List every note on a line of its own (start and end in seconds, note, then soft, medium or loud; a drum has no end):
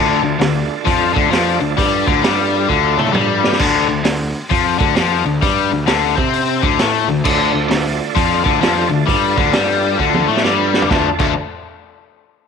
0.00 0.23 D2 medium
0.00 0.22 D3 loud
0.00 3.56 D4 medium
0.00 3.57 F4 medium
0.00 3.56 A4 medium
0.00 3.56 D5 medium
0.23 0.39 D2 medium
0.23 0.37 D3 medium
0.40 0.68 D2 medium
0.40 0.64 D3 medium
0.40 snare loud
0.40 open hi-hat medium
0.85 1.14 F2 loud
0.85 1.13 F3 loud
0.85 kick loud
0.85 open hi-hat medium
1.14 1.30 D2 loud
1.14 1.31 D3 loud
1.14 kick loud
1.31 1.58 F2 loud
1.31 1.60 F3 loud
1.31 snare loud
1.31 open hi-hat medium
1.60 1.76 D2 medium
1.60 1.74 D3 medium
1.77 2.05 G2 medium
1.77 2.06 G3 loud
1.77 kick loud
1.77 open hi-hat medium
2.06 2.22 D2 loud
2.06 2.23 D3 loud
2.06 kick loud
2.22 2.65 G2 medium
2.22 2.68 G3 loud
2.22 snare loud
2.22 open hi-hat medium
2.69 2.96 D2 loud
2.69 2.97 D3 loud
2.69 kick medium
2.97 3.13 A2 medium
2.97 3.13 A3 loud
2.97 mid tom medium
3.07 mid tom medium
3.13 3.56 G2 loud
3.13 3.59 G3 loud
3.13 mid tom medium
3.44 snare medium
3.52 snare loud
3.59 3.87 D2 loud
3.59 3.88 D3 loud
3.59 kick loud
3.59 crash loud
3.89 4.03 D2 medium
3.89 4.02 D3 medium
4.04 4.32 D2 medium
4.04 4.29 D3 medium
4.04 snare loud
4.04 open hi-hat medium
4.50 4.78 F2 loud
4.50 4.78 F3 loud
4.50 kick loud
4.50 open hi-hat medium
4.79 4.96 D2 medium
4.79 4.95 D3 loud
4.79 kick loud
4.96 5.24 F2 loud
4.96 5.25 F3 loud
4.96 snare loud
4.96 open hi-hat medium
5.25 5.41 D2 medium
5.25 5.39 D3 medium
5.42 5.70 G2 loud
5.42 5.70 G3 loud
5.42 kick loud
5.42 open hi-hat medium
5.70 5.87 D2 medium
5.70 5.84 D3 medium
5.86 6.16 D2 medium
5.86 6.16 D3 loud
5.86 snare loud
5.86 open hi-hat medium
6.16 6.60 C3 loud
6.16 6.61 C4 loud
6.16 kick loud
6.33 open hi-hat medium
6.61 6.79 D2 loud
6.61 6.78 D3 loud
6.61 kick loud
6.79 7.07 A2 loud
6.79 7.08 A3 loud
6.79 snare loud
6.79 open hi-hat medium
7.08 7.24 D2 loud
7.08 7.22 D3 medium
7.24 7.53 D2 loud
7.24 7.51 D3 loud
7.24 10.86 D4 medium
7.24 10.86 F4 medium
7.24 10.86 A4 medium
7.24 10.86 D5 medium
7.24 kick loud
7.24 crash loud
7.53 7.70 D2 medium
7.53 7.67 D3 medium
7.69 7.98 D2 medium
7.69 7.93 D3 medium
7.69 snare loud
7.69 open hi-hat medium
8.15 8.44 F2 loud
8.15 8.44 F3 loud
8.15 kick loud
8.15 open hi-hat medium
8.44 8.61 D2 loud
8.44 8.60 D3 loud
8.44 kick loud
8.61 8.89 F2 medium
8.61 8.89 F3 loud
8.61 snare loud
8.61 open hi-hat medium
8.90 9.06 D2 medium
8.90 9.04 D3 medium
9.07 9.35 G2 medium
9.07 9.36 G3 loud
9.07 kick loud
9.07 open hi-hat medium
9.37 9.53 D2 medium
9.37 9.53 D3 loud
9.37 kick loud
9.52 9.96 G2 medium
9.52 9.98 G3 loud
9.52 snare loud
9.52 open hi-hat medium
9.98 10.26 D2 loud
9.98 10.27 D3 loud
9.98 kick medium
10.14 high tom medium
10.28 10.44 A2 loud
10.28 10.43 A3 loud
10.37 snare medium
10.44 10.87 G2 loud
10.44 10.89 G3 loud
10.44 snare medium
10.74 snare medium
10.82 floor tom loud
10.90 11.07 D2 medium
10.90 11.08 D3 loud
10.90 11.08 F3 loud
10.90 11.08 A3 loud
10.90 11.08 D4 loud
10.90 11.27 D4 medium
10.90 11.26 F4 medium
10.90 11.27 A4 medium
10.90 11.27 D5 medium
10.90 kick loud
10.90 snare medium
11.19 11.35 D2 loud
11.19 11.32 D3 medium
11.19 11.32 F3 loud
11.19 11.32 A3 loud
11.19 11.33 D4 loud
11.19 kick loud
11.19 crash medium